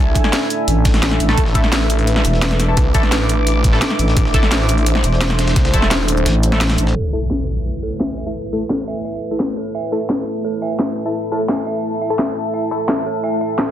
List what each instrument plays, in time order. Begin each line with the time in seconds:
Already playing: analog synth pad A3 D4 G#5, ambient pad E4 A4 E5
0.00 detuned saw bass C2
0.15 kick, closed hi-hat, shaker
0.24 snare
0.33 snare, closed hi-hat
0.50 closed hi-hat, shaker
0.68 fm bass A1, closed hi-hat
0.85 kick, snare, closed hi-hat, shaker
0.94 snare, closed hi-hat
1.03 snare, closed hi-hat
1.11 snare, shaker
1.20 fm bass A1, closed hi-hat, shaker
1.29 synth stab A3 E4 A4, snare
1.38 detuned saw bass A1, analog synth pad B4, kick, closed hi-hat
1.46 snare
1.55 synth stab A3 E4 A4, kick, closed hi-hat, shaker
1.64 snare
1.72 snare, closed hi-hat
1.81 snare
1.90 closed hi-hat, shaker
1.99 closed hi-hat
2.03 ambient pad D6, closed hi-hat
2.16 snare
2.25 fm bass E1, closed hi-hat, shaker
2.33 snare
2.42 snare, closed hi-hat
2.51 snare, shaker
2.60 snare, closed hi-hat, shaker
2.68 synth stab A3 E4 A4
2.77 detuned saw bass C2, kick, closed hi-hat
2.95 detuned saw bass A1, synth stab A3 E4 A4, kick, closed hi-hat, shaker
3.03 snare
3.12 snare, closed hi-hat
3.29 closed hi-hat, shaker
3.47 closed hi-hat
3.64 kick, closed hi-hat, shaker
3.73 synth stab A3 E4 A4, snare
3.82 snare, closed hi-hat
3.90 snare, shaker
3.99 fm bass A1, closed hi-hat, shaker
4.08 snare
4.17 detuned saw bass A1, analog synth pad C5, kick, closed hi-hat
4.25 snare
4.34 synth stab A3 E4 A4, kick, closed hi-hat, shaker
4.43 snare
4.52 snare, closed hi-hat
4.60 snare
4.69 closed hi-hat, shaker
4.78 closed hi-hat
4.86 closed hi-hat
4.95 snare
5.04 fm bass E1, closed hi-hat, shaker
5.13 snare
5.21 snare, closed hi-hat
5.30 snare, shaker
5.39 snare, closed hi-hat, shaker
5.47 snare, closed hi-hat
5.56 detuned saw bass C2, kick, snare, closed hi-hat
5.65 snare, closed hi-hat
5.74 detuned saw bass E1, synth stab A3 E4 A4, kick, closed hi-hat, shaker
5.82 snare
5.91 snare, closed hi-hat
6.08 closed hi-hat, shaker
6.17 shaker
6.26 fm bass A1, snare, closed hi-hat
6.43 closed hi-hat, shaker
6.52 synth stab A3 E4 A4, snare
6.61 snare, closed hi-hat
6.70 snare, closed hi-hat, shaker
6.78 fm bass A1, closed hi-hat, shaker
6.87 snare
6.96 analog synth pad A3 E4 B4, ambient pad E4, synth bell A4, impact
7.00 ambient pad A4
7.13 synth stab A3 E4 A4, synth bell E5
7.29 ambient pad E5, synth bell E5, snare
7.74 ambient pad A5
7.83 synth bell A4
8.00 synth bell E5, snare
8.18 synth bell E5
8.26 synth stab A3 E4 A4
8.53 synth stab A3 E4 A4
8.70 synth bell A4, snare
8.88 synth bell E5
9.05 synth bell E5
9.31 synth stab A3 E4 A4
9.40 snare
9.57 synth bell A4
9.75 synth bell E5
9.92 synth stab A3 E4 A4, synth bell E5
10.10 snare
10.44 synth bell A4
10.62 synth bell E5
10.79 snare
11.06 synth stab A3 E4 A4
11.32 synth stab A3 E4 A4, synth bell A4
11.49 synth bell E5, snare
11.67 synth bell E5
12.01 synth bell E5
12.10 synth stab A3 E4 A4
12.19 synth bell E5, snare
12.54 analog synth pad A4, synth bell E5
12.71 synth stab A3 E4 A4
12.89 snare
13.06 synth bell A4
13.24 synth bell E5
13.41 synth bell E5
13.58 snare